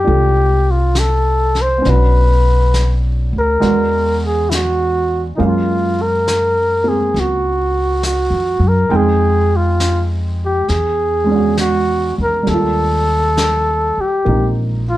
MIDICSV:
0, 0, Header, 1, 6, 480
1, 0, Start_track
1, 0, Tempo, 883652
1, 1001, Time_signature, 4, 2, 24, 8
1, 5793, Tempo, 894188
1, 8106, End_track
2, 0, Start_track
2, 0, Title_t, "Muted trumpet"
2, 0, Program_c, 0, 59
2, 0, Note_on_c, 0, 67, 70
2, 387, Note_on_c, 0, 65, 55
2, 395, Note_off_c, 0, 67, 0
2, 539, Note_on_c, 0, 69, 64
2, 548, Note_off_c, 0, 65, 0
2, 879, Note_on_c, 0, 72, 66
2, 887, Note_off_c, 0, 69, 0
2, 1030, Note_on_c, 0, 71, 72
2, 1038, Note_off_c, 0, 72, 0
2, 1625, Note_off_c, 0, 71, 0
2, 1839, Note_on_c, 0, 70, 70
2, 2282, Note_off_c, 0, 70, 0
2, 2314, Note_on_c, 0, 68, 62
2, 2444, Note_on_c, 0, 64, 45
2, 2452, Note_off_c, 0, 68, 0
2, 2466, Note_on_c, 0, 66, 71
2, 2474, Note_off_c, 0, 64, 0
2, 2856, Note_off_c, 0, 66, 0
2, 2911, Note_on_c, 0, 63, 46
2, 2964, Note_on_c, 0, 65, 67
2, 2973, Note_off_c, 0, 63, 0
2, 3269, Note_on_c, 0, 70, 66
2, 3278, Note_off_c, 0, 65, 0
2, 3739, Note_on_c, 0, 68, 63
2, 3748, Note_off_c, 0, 70, 0
2, 3910, Note_on_c, 0, 66, 64
2, 3918, Note_off_c, 0, 68, 0
2, 4371, Note_off_c, 0, 66, 0
2, 4378, Note_on_c, 0, 66, 60
2, 4716, Note_on_c, 0, 70, 69
2, 4725, Note_off_c, 0, 66, 0
2, 4867, Note_on_c, 0, 68, 71
2, 4876, Note_off_c, 0, 70, 0
2, 5195, Note_on_c, 0, 65, 58
2, 5203, Note_off_c, 0, 68, 0
2, 5461, Note_off_c, 0, 65, 0
2, 5677, Note_on_c, 0, 67, 67
2, 5808, Note_on_c, 0, 68, 62
2, 5816, Note_off_c, 0, 67, 0
2, 6282, Note_off_c, 0, 68, 0
2, 6292, Note_on_c, 0, 66, 70
2, 6591, Note_off_c, 0, 66, 0
2, 6631, Note_on_c, 0, 70, 70
2, 6770, Note_on_c, 0, 69, 70
2, 6778, Note_off_c, 0, 70, 0
2, 7589, Note_on_c, 0, 67, 67
2, 7597, Note_off_c, 0, 69, 0
2, 7859, Note_off_c, 0, 67, 0
2, 8063, Note_on_c, 0, 65, 67
2, 8106, Note_off_c, 0, 65, 0
2, 8106, End_track
3, 0, Start_track
3, 0, Title_t, "Grand piano"
3, 0, Program_c, 1, 0
3, 0, Control_c, 1, 64, 127
3, 0, Note_on_c, 1, 57, 45
3, 0, Note_on_c, 1, 60, 36
3, 0, Note_on_c, 1, 67, 51
3, 0, Note_on_c, 1, 76, 38
3, 22, Note_on_c, 1, 62, 34
3, 29, Note_on_c, 1, 65, 33
3, 37, Note_on_c, 1, 69, 39
3, 967, Note_on_c, 1, 59, 42
3, 989, Note_on_c, 1, 61, 41
3, 996, Note_off_c, 1, 62, 0
3, 998, Note_off_c, 1, 57, 0
3, 999, Note_off_c, 1, 65, 0
3, 1003, Note_off_c, 1, 60, 0
3, 1003, Note_off_c, 1, 69, 0
3, 1007, Note_on_c, 1, 62, 39
3, 1008, Note_off_c, 1, 76, 0
3, 1008, Control_c, 1, 64, 0
3, 1010, Note_off_c, 1, 67, 0
3, 1025, Note_on_c, 1, 66, 44
3, 1088, Control_c, 1, 64, 127
3, 1945, Note_off_c, 1, 59, 0
3, 1954, Note_off_c, 1, 62, 0
3, 1954, Note_off_c, 1, 66, 0
3, 1955, Note_off_c, 1, 61, 0
3, 1956, Note_on_c, 1, 56, 45
3, 1960, Note_on_c, 1, 59, 42
3, 1962, Note_on_c, 1, 62, 41
3, 1962, Note_on_c, 1, 66, 52
3, 1969, Control_c, 1, 64, 0
3, 2070, Control_c, 1, 64, 127
3, 2912, Note_off_c, 1, 56, 0
3, 2920, Note_off_c, 1, 59, 0
3, 2920, Note_on_c, 1, 56, 41
3, 2921, Note_off_c, 1, 62, 0
3, 2921, Note_off_c, 1, 66, 0
3, 2923, Note_on_c, 1, 58, 38
3, 2924, Note_on_c, 1, 61, 38
3, 2928, Control_c, 1, 64, 0
3, 2929, Note_on_c, 1, 77, 51
3, 3019, Control_c, 1, 64, 127
3, 3707, Note_off_c, 1, 58, 0
3, 3715, Note_on_c, 1, 58, 32
3, 3731, Note_on_c, 1, 60, 39
3, 4822, Note_off_c, 1, 56, 0
3, 4829, Note_off_c, 1, 60, 0
3, 4831, Note_on_c, 1, 56, 48
3, 4832, Note_off_c, 1, 58, 0
3, 4835, Note_off_c, 1, 61, 0
3, 4837, Note_on_c, 1, 60, 42
3, 4837, Note_on_c, 1, 63, 37
3, 4838, Note_off_c, 1, 77, 0
3, 4840, Control_c, 1, 64, 0
3, 4842, Note_on_c, 1, 79, 54
3, 4924, Control_c, 1, 64, 127
3, 5794, Note_off_c, 1, 56, 0
3, 5797, Note_off_c, 1, 60, 0
3, 5797, Note_off_c, 1, 63, 0
3, 5799, Note_off_c, 1, 79, 0
3, 5802, Control_c, 1, 64, 0
3, 5885, Control_c, 1, 64, 127
3, 6103, Note_on_c, 1, 56, 33
3, 6116, Note_on_c, 1, 61, 35
3, 6140, Note_on_c, 1, 62, 34
3, 6162, Note_on_c, 1, 66, 40
3, 6741, Note_on_c, 1, 55, 39
3, 6750, Note_off_c, 1, 56, 0
3, 6757, Note_off_c, 1, 61, 0
3, 6762, Note_on_c, 1, 58, 31
3, 6766, Control_c, 1, 64, 0
3, 6769, Note_off_c, 1, 62, 0
3, 6779, Note_off_c, 1, 66, 0
3, 6780, Note_on_c, 1, 62, 32
3, 6798, Note_on_c, 1, 65, 41
3, 6852, Control_c, 1, 64, 127
3, 7710, Note_off_c, 1, 58, 0
3, 7718, Note_on_c, 1, 58, 36
3, 7724, Note_on_c, 1, 60, 29
3, 7734, Note_on_c, 1, 63, 38
3, 8106, Note_off_c, 1, 55, 0
3, 8106, Note_off_c, 1, 58, 0
3, 8106, Note_off_c, 1, 60, 0
3, 8106, Note_off_c, 1, 62, 0
3, 8106, Note_off_c, 1, 63, 0
3, 8106, Note_off_c, 1, 65, 0
3, 8106, End_track
4, 0, Start_track
4, 0, Title_t, "Upright bass"
4, 0, Program_c, 2, 32
4, 41, Note_on_c, 2, 36, 61
4, 983, Note_off_c, 2, 36, 0
4, 1010, Note_on_c, 2, 35, 71
4, 1790, Note_off_c, 2, 35, 0
4, 1808, Note_on_c, 2, 38, 48
4, 1951, Note_off_c, 2, 38, 0
4, 1967, Note_on_c, 2, 40, 64
4, 2902, Note_off_c, 2, 40, 0
4, 2930, Note_on_c, 2, 42, 62
4, 3861, Note_off_c, 2, 42, 0
4, 3879, Note_on_c, 2, 37, 63
4, 4493, Note_off_c, 2, 37, 0
4, 4510, Note_on_c, 2, 41, 45
4, 4660, Note_off_c, 2, 41, 0
4, 4668, Note_on_c, 2, 42, 54
4, 4819, Note_off_c, 2, 42, 0
4, 4836, Note_on_c, 2, 41, 65
4, 5775, Note_off_c, 2, 41, 0
4, 5806, Note_on_c, 2, 40, 57
4, 6588, Note_off_c, 2, 40, 0
4, 6608, Note_on_c, 2, 40, 51
4, 6750, Note_off_c, 2, 40, 0
4, 6762, Note_on_c, 2, 39, 62
4, 7545, Note_off_c, 2, 39, 0
4, 7723, Note_on_c, 2, 34, 64
4, 8106, Note_off_c, 2, 34, 0
4, 8106, End_track
5, 0, Start_track
5, 0, Title_t, "Muted upright bass strokes"
5, 7569, Note_on_c, 9, 29, 29
5, 7623, Note_off_c, 9, 29, 0
5, 8106, End_track
6, 0, Start_track
6, 0, Title_t, "Drums"
6, 34, Note_on_c, 9, 25, 28
6, 516, Note_on_c, 9, 38, 34
6, 516, Note_on_c, 9, 44, 45
6, 570, Note_off_c, 9, 38, 0
6, 570, Note_off_c, 9, 44, 0
6, 841, Note_on_c, 9, 38, 19
6, 895, Note_off_c, 9, 38, 0
6, 1005, Note_off_c, 9, 25, 0
6, 1005, Note_on_c, 9, 25, 35
6, 1005, Note_on_c, 9, 38, 22
6, 1059, Note_off_c, 9, 38, 0
6, 1487, Note_on_c, 9, 38, 34
6, 1487, Note_on_c, 9, 44, 38
6, 1542, Note_off_c, 9, 38, 0
6, 1542, Note_off_c, 9, 44, 0
6, 1966, Note_off_c, 9, 25, 0
6, 1966, Note_on_c, 9, 25, 28
6, 1966, Note_on_c, 9, 38, 22
6, 2021, Note_off_c, 9, 38, 0
6, 2452, Note_on_c, 9, 38, 37
6, 2452, Note_on_c, 9, 44, 47
6, 2506, Note_off_c, 9, 38, 0
6, 2506, Note_off_c, 9, 44, 0
6, 2924, Note_off_c, 9, 25, 0
6, 2924, Note_on_c, 9, 25, 31
6, 3408, Note_on_c, 9, 38, 34
6, 3408, Note_on_c, 9, 44, 49
6, 3463, Note_off_c, 9, 38, 0
6, 3463, Note_off_c, 9, 44, 0
6, 3888, Note_off_c, 9, 25, 0
6, 3888, Note_on_c, 9, 25, 33
6, 3888, Note_on_c, 9, 38, 21
6, 3943, Note_off_c, 9, 38, 0
6, 4363, Note_on_c, 9, 38, 36
6, 4363, Note_on_c, 9, 44, 50
6, 4417, Note_off_c, 9, 38, 0
6, 4417, Note_off_c, 9, 44, 0
6, 4843, Note_off_c, 9, 25, 0
6, 4843, Note_on_c, 9, 25, 33
6, 5323, Note_on_c, 9, 38, 39
6, 5323, Note_on_c, 9, 44, 42
6, 5377, Note_off_c, 9, 38, 0
6, 5377, Note_off_c, 9, 44, 0
6, 5803, Note_off_c, 9, 25, 0
6, 5803, Note_on_c, 9, 25, 32
6, 5803, Note_on_c, 9, 38, 23
6, 5857, Note_off_c, 9, 38, 0
6, 6281, Note_on_c, 9, 38, 38
6, 6281, Note_on_c, 9, 44, 50
6, 6335, Note_off_c, 9, 38, 0
6, 6335, Note_off_c, 9, 44, 0
6, 6761, Note_off_c, 9, 25, 0
6, 6761, Note_on_c, 9, 25, 32
6, 6761, Note_on_c, 9, 38, 25
6, 6815, Note_off_c, 9, 38, 0
6, 7247, Note_on_c, 9, 38, 39
6, 7247, Note_on_c, 9, 44, 39
6, 7300, Note_off_c, 9, 38, 0
6, 7300, Note_off_c, 9, 44, 0
6, 7725, Note_off_c, 9, 25, 0
6, 7725, Note_on_c, 9, 25, 31
6, 8106, Note_off_c, 9, 25, 0
6, 8106, End_track
0, 0, End_of_file